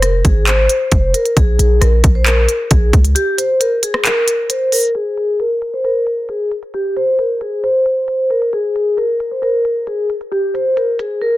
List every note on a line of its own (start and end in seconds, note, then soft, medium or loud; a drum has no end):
0.00 0.23 F1 loud
0.00 0.21 A#4 medium
0.00 cross-stick medium
0.00 closed hi-hat medium
0.25 0.68 G#1 loud
0.25 0.44 G#4 medium
0.25 kick loud
0.25 closed hi-hat medium
0.47 1.10 C5 loud
0.47 clap loud
0.47 closed hi-hat medium
0.69 closed hi-hat medium
0.92 1.13 F1 loud
0.92 kick loud
0.92 closed hi-hat medium
1.14 1.33 A#4 medium
1.14 closed hi-hat medium
1.25 closed hi-hat soft
1.37 1.58 A#1 loud
1.37 1.79 G#4 loud
1.37 kick loud
1.37 closed hi-hat medium
1.59 1.81 A#1 loud
1.59 closed hi-hat medium
1.81 2.03 A#1 loud
1.81 2.13 A#4 medium
1.81 cross-stick medium
1.81 closed hi-hat medium
2.04 2.47 A#1 loud
2.04 kick loud
2.04 closed hi-hat medium
2.15 2.25 C5 medium
2.26 2.68 A#4 loud
2.26 clap loud
2.26 closed hi-hat medium
2.49 closed hi-hat medium
2.71 2.92 A#1 loud
2.71 2.90 G#4 medium
2.71 kick medium
2.71 closed hi-hat medium
2.93 3.15 C#2 loud
2.93 kick medium
2.93 closed hi-hat medium
3.05 closed hi-hat soft
3.15 3.34 G4 loud
3.15 closed hi-hat medium
3.38 3.57 C5 medium
3.38 closed hi-hat medium
3.60 3.79 A#4 medium
3.60 closed hi-hat medium
3.83 4.02 G#4 medium
3.83 closed hi-hat medium
3.94 cross-stick medium
4.05 4.47 A#4 medium
4.05 clap loud
4.05 closed hi-hat medium
4.28 closed hi-hat medium
4.50 4.69 C5 medium
4.50 closed hi-hat medium
4.72 4.91 A#4 medium
4.72 open hi-hat medium
4.95 5.37 G#4 medium
4.95 closed hi-hat medium
5.17 closed hi-hat medium
5.40 5.71 A#4 medium
5.40 closed hi-hat medium
5.62 closed hi-hat medium
5.74 5.83 C5 medium
5.84 6.26 A#4 medium
5.84 closed hi-hat medium
6.07 closed hi-hat medium
6.29 6.48 G#4 medium
6.29 closed hi-hat medium
6.51 closed hi-hat medium
6.63 closed hi-hat soft
6.74 6.93 G4 loud
6.74 closed hi-hat medium
6.97 7.16 C5 medium
6.97 closed hi-hat medium
7.19 7.38 A#4 medium
7.19 closed hi-hat medium
7.41 7.60 G#4 medium
7.41 closed hi-hat medium
7.63 8.27 C5 medium
7.63 closed hi-hat medium
7.86 closed hi-hat medium
8.08 closed hi-hat medium
8.30 8.49 A#4 medium
8.30 closed hi-hat medium
8.42 closed hi-hat soft
8.53 8.95 G#4 loud
8.53 closed hi-hat medium
8.76 closed hi-hat medium
8.97 9.29 A#4 medium
8.97 closed hi-hat medium
9.20 closed hi-hat medium
9.31 9.41 C5 medium
9.42 9.84 A#4 medium
9.42 closed hi-hat medium
9.65 closed hi-hat medium
9.87 10.06 G#4 medium
9.87 closed hi-hat medium
10.10 closed hi-hat medium
10.21 closed hi-hat soft
10.32 10.51 G4 loud
10.32 closed hi-hat medium
10.54 10.73 C5 medium
10.54 closed hi-hat medium
10.77 10.96 A#4 medium
10.77 closed hi-hat medium
10.99 11.18 G#4 medium
10.99 closed hi-hat medium
11.21 11.37 A#4 medium